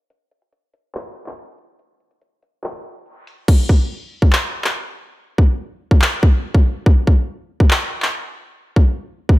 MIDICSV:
0, 0, Header, 1, 2, 480
1, 0, Start_track
1, 0, Tempo, 422535
1, 116, Time_signature, 4, 2, 24, 8
1, 10667, End_track
2, 0, Start_track
2, 0, Title_t, "Drums"
2, 116, Note_on_c, 9, 42, 84
2, 229, Note_off_c, 9, 42, 0
2, 356, Note_on_c, 9, 42, 63
2, 470, Note_off_c, 9, 42, 0
2, 476, Note_on_c, 9, 42, 37
2, 590, Note_off_c, 9, 42, 0
2, 597, Note_on_c, 9, 42, 85
2, 710, Note_off_c, 9, 42, 0
2, 836, Note_on_c, 9, 42, 86
2, 949, Note_off_c, 9, 42, 0
2, 1076, Note_on_c, 9, 39, 113
2, 1190, Note_off_c, 9, 39, 0
2, 1316, Note_on_c, 9, 42, 66
2, 1429, Note_off_c, 9, 42, 0
2, 1436, Note_on_c, 9, 39, 73
2, 1550, Note_off_c, 9, 39, 0
2, 1557, Note_on_c, 9, 42, 67
2, 1670, Note_off_c, 9, 42, 0
2, 1798, Note_on_c, 9, 42, 79
2, 1912, Note_off_c, 9, 42, 0
2, 2036, Note_on_c, 9, 42, 82
2, 2149, Note_off_c, 9, 42, 0
2, 2276, Note_on_c, 9, 42, 37
2, 2390, Note_off_c, 9, 42, 0
2, 2396, Note_on_c, 9, 42, 65
2, 2509, Note_off_c, 9, 42, 0
2, 2516, Note_on_c, 9, 42, 87
2, 2630, Note_off_c, 9, 42, 0
2, 2756, Note_on_c, 9, 42, 86
2, 2869, Note_off_c, 9, 42, 0
2, 2996, Note_on_c, 9, 39, 112
2, 3109, Note_off_c, 9, 39, 0
2, 3236, Note_on_c, 9, 42, 53
2, 3316, Note_off_c, 9, 42, 0
2, 3316, Note_on_c, 9, 42, 56
2, 3396, Note_off_c, 9, 42, 0
2, 3396, Note_on_c, 9, 42, 55
2, 3477, Note_off_c, 9, 42, 0
2, 3477, Note_on_c, 9, 42, 63
2, 3590, Note_off_c, 9, 42, 0
2, 3718, Note_on_c, 9, 42, 85
2, 3832, Note_off_c, 9, 42, 0
2, 3956, Note_on_c, 9, 36, 116
2, 3956, Note_on_c, 9, 49, 97
2, 4069, Note_off_c, 9, 36, 0
2, 4069, Note_off_c, 9, 49, 0
2, 4195, Note_on_c, 9, 36, 90
2, 4309, Note_off_c, 9, 36, 0
2, 4795, Note_on_c, 9, 36, 89
2, 4909, Note_off_c, 9, 36, 0
2, 4915, Note_on_c, 9, 39, 116
2, 5029, Note_off_c, 9, 39, 0
2, 5275, Note_on_c, 9, 39, 72
2, 5389, Note_off_c, 9, 39, 0
2, 6115, Note_on_c, 9, 36, 90
2, 6229, Note_off_c, 9, 36, 0
2, 6715, Note_on_c, 9, 36, 93
2, 6829, Note_off_c, 9, 36, 0
2, 6835, Note_on_c, 9, 39, 113
2, 6948, Note_off_c, 9, 39, 0
2, 7076, Note_on_c, 9, 36, 108
2, 7189, Note_off_c, 9, 36, 0
2, 7435, Note_on_c, 9, 36, 92
2, 7549, Note_off_c, 9, 36, 0
2, 7795, Note_on_c, 9, 36, 113
2, 7909, Note_off_c, 9, 36, 0
2, 8035, Note_on_c, 9, 36, 93
2, 8149, Note_off_c, 9, 36, 0
2, 8635, Note_on_c, 9, 36, 91
2, 8749, Note_off_c, 9, 36, 0
2, 8755, Note_on_c, 9, 39, 116
2, 8868, Note_off_c, 9, 39, 0
2, 9115, Note_on_c, 9, 39, 71
2, 9229, Note_off_c, 9, 39, 0
2, 9955, Note_on_c, 9, 36, 94
2, 10069, Note_off_c, 9, 36, 0
2, 10555, Note_on_c, 9, 36, 95
2, 10667, Note_off_c, 9, 36, 0
2, 10667, End_track
0, 0, End_of_file